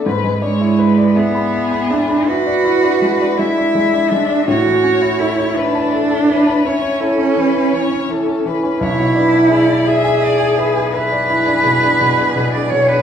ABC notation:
X:1
M:12/8
L:1/16
Q:3/8=55
K:Emix
V:1 name="Violin"
B2 c2 B2 G6 B6 e6 | c6 B2 A2 B2 c2 A2 B2 c2 A2 B2 | c2 B2 d2 e2 d2 B2 G12 |]
V:2 name="Cello"
z2 G,4 B,4 D2 F6 E4 D2 | F4 E2 D6 C8- C2 z2 | E6 G6 B8- B d c B |]
V:3 name="Grand piano"
G,, G, D E B d e b e b e b e d E D G, D G, D G, D G, D | A,, E, C E A c e a e a e a e c E C E, C E, C E, C E, C | B,,, B,, D E G d e g e g e g e d E D B,, D B,, D B,, D B,, D |]